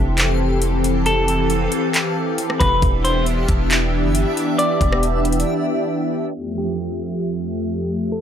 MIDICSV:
0, 0, Header, 1, 6, 480
1, 0, Start_track
1, 0, Tempo, 441176
1, 1152, Time_signature, 4, 2, 24, 8
1, 8934, End_track
2, 0, Start_track
2, 0, Title_t, "Clean electric guitar"
2, 0, Program_c, 0, 27
2, 1155, Note_on_c, 0, 69, 107
2, 2790, Note_off_c, 0, 69, 0
2, 2824, Note_on_c, 0, 71, 85
2, 3056, Note_off_c, 0, 71, 0
2, 3313, Note_on_c, 0, 72, 90
2, 3540, Note_off_c, 0, 72, 0
2, 4988, Note_on_c, 0, 74, 109
2, 6387, Note_off_c, 0, 74, 0
2, 7157, Note_on_c, 0, 67, 86
2, 7383, Note_off_c, 0, 67, 0
2, 8835, Note_on_c, 0, 69, 98
2, 8934, Note_off_c, 0, 69, 0
2, 8934, End_track
3, 0, Start_track
3, 0, Title_t, "Synth texture"
3, 0, Program_c, 1, 99
3, 0, Note_on_c, 1, 52, 83
3, 0, Note_on_c, 1, 69, 72
3, 0, Note_on_c, 1, 77, 88
3, 3035, Note_off_c, 1, 52, 0
3, 3035, Note_off_c, 1, 69, 0
3, 3035, Note_off_c, 1, 77, 0
3, 3076, Note_on_c, 1, 76, 86
3, 3078, Note_on_c, 1, 62, 82
3, 3078, Note_on_c, 1, 67, 72
3, 6876, Note_off_c, 1, 76, 0
3, 6877, Note_off_c, 1, 62, 0
3, 6877, Note_off_c, 1, 67, 0
3, 6908, Note_on_c, 1, 65, 73
3, 6910, Note_on_c, 1, 76, 87
3, 6911, Note_on_c, 1, 57, 80
3, 8811, Note_off_c, 1, 65, 0
3, 8934, Note_off_c, 1, 57, 0
3, 8934, Note_off_c, 1, 76, 0
3, 8934, End_track
4, 0, Start_track
4, 0, Title_t, "Analog synth pad"
4, 0, Program_c, 2, 89
4, 0, Note_on_c, 2, 52, 85
4, 0, Note_on_c, 2, 60, 79
4, 0, Note_on_c, 2, 67, 80
4, 0, Note_on_c, 2, 69, 93
4, 3028, Note_off_c, 2, 67, 0
4, 3032, Note_off_c, 2, 60, 0
4, 3033, Note_off_c, 2, 52, 0
4, 3033, Note_off_c, 2, 69, 0
4, 3073, Note_on_c, 2, 67, 79
4, 3074, Note_on_c, 2, 59, 80
4, 3074, Note_on_c, 2, 76, 97
4, 3075, Note_on_c, 2, 52, 86
4, 3076, Note_on_c, 2, 62, 78
4, 6874, Note_off_c, 2, 67, 0
4, 6875, Note_off_c, 2, 52, 0
4, 6875, Note_off_c, 2, 59, 0
4, 6875, Note_off_c, 2, 76, 0
4, 6876, Note_off_c, 2, 62, 0
4, 6911, Note_on_c, 2, 67, 78
4, 6912, Note_on_c, 2, 41, 82
4, 6912, Note_on_c, 2, 53, 76
4, 6912, Note_on_c, 2, 57, 79
4, 6912, Note_on_c, 2, 76, 92
4, 8934, Note_off_c, 2, 41, 0
4, 8934, Note_off_c, 2, 53, 0
4, 8934, Note_off_c, 2, 57, 0
4, 8934, Note_off_c, 2, 67, 0
4, 8934, Note_off_c, 2, 76, 0
4, 8934, End_track
5, 0, Start_track
5, 0, Title_t, "808-style bass"
5, 0, Program_c, 3, 38
5, 0, Note_on_c, 3, 29, 107
5, 1828, Note_off_c, 3, 29, 0
5, 2835, Note_on_c, 3, 29, 98
5, 3064, Note_off_c, 3, 29, 0
5, 3072, Note_on_c, 3, 28, 111
5, 3764, Note_off_c, 3, 28, 0
5, 3794, Note_on_c, 3, 28, 105
5, 4395, Note_on_c, 3, 31, 102
5, 4411, Note_off_c, 3, 28, 0
5, 4622, Note_off_c, 3, 31, 0
5, 5232, Note_on_c, 3, 28, 97
5, 5924, Note_off_c, 3, 28, 0
5, 8934, End_track
6, 0, Start_track
6, 0, Title_t, "Drums"
6, 192, Note_on_c, 9, 42, 76
6, 198, Note_on_c, 9, 39, 122
6, 301, Note_off_c, 9, 42, 0
6, 307, Note_off_c, 9, 39, 0
6, 671, Note_on_c, 9, 42, 89
6, 779, Note_off_c, 9, 42, 0
6, 917, Note_on_c, 9, 42, 76
6, 1026, Note_off_c, 9, 42, 0
6, 1151, Note_on_c, 9, 42, 72
6, 1260, Note_off_c, 9, 42, 0
6, 1394, Note_on_c, 9, 42, 75
6, 1503, Note_off_c, 9, 42, 0
6, 1630, Note_on_c, 9, 42, 73
6, 1739, Note_off_c, 9, 42, 0
6, 1869, Note_on_c, 9, 42, 73
6, 1978, Note_off_c, 9, 42, 0
6, 2112, Note_on_c, 9, 42, 74
6, 2118, Note_on_c, 9, 39, 117
6, 2221, Note_off_c, 9, 42, 0
6, 2227, Note_off_c, 9, 39, 0
6, 2591, Note_on_c, 9, 42, 88
6, 2700, Note_off_c, 9, 42, 0
6, 2718, Note_on_c, 9, 37, 91
6, 2827, Note_off_c, 9, 37, 0
6, 2835, Note_on_c, 9, 36, 97
6, 2837, Note_on_c, 9, 42, 74
6, 2839, Note_on_c, 9, 37, 95
6, 2944, Note_off_c, 9, 36, 0
6, 2945, Note_off_c, 9, 42, 0
6, 2948, Note_off_c, 9, 37, 0
6, 3073, Note_on_c, 9, 36, 124
6, 3073, Note_on_c, 9, 42, 69
6, 3181, Note_off_c, 9, 36, 0
6, 3182, Note_off_c, 9, 42, 0
6, 3316, Note_on_c, 9, 42, 75
6, 3424, Note_off_c, 9, 42, 0
6, 3552, Note_on_c, 9, 42, 75
6, 3660, Note_off_c, 9, 42, 0
6, 3791, Note_on_c, 9, 42, 71
6, 3793, Note_on_c, 9, 36, 93
6, 3900, Note_off_c, 9, 42, 0
6, 3902, Note_off_c, 9, 36, 0
6, 4032, Note_on_c, 9, 42, 77
6, 4038, Note_on_c, 9, 39, 117
6, 4141, Note_off_c, 9, 42, 0
6, 4147, Note_off_c, 9, 39, 0
6, 4512, Note_on_c, 9, 42, 89
6, 4621, Note_off_c, 9, 42, 0
6, 4756, Note_on_c, 9, 42, 74
6, 4865, Note_off_c, 9, 42, 0
6, 4994, Note_on_c, 9, 42, 71
6, 5102, Note_off_c, 9, 42, 0
6, 5231, Note_on_c, 9, 36, 91
6, 5235, Note_on_c, 9, 42, 74
6, 5340, Note_off_c, 9, 36, 0
6, 5344, Note_off_c, 9, 42, 0
6, 5358, Note_on_c, 9, 37, 105
6, 5467, Note_off_c, 9, 37, 0
6, 5472, Note_on_c, 9, 42, 70
6, 5581, Note_off_c, 9, 42, 0
6, 5712, Note_on_c, 9, 46, 57
6, 5714, Note_on_c, 9, 42, 45
6, 5793, Note_off_c, 9, 42, 0
6, 5793, Note_on_c, 9, 42, 58
6, 5821, Note_off_c, 9, 46, 0
6, 5872, Note_off_c, 9, 42, 0
6, 5872, Note_on_c, 9, 42, 77
6, 5981, Note_off_c, 9, 42, 0
6, 8934, End_track
0, 0, End_of_file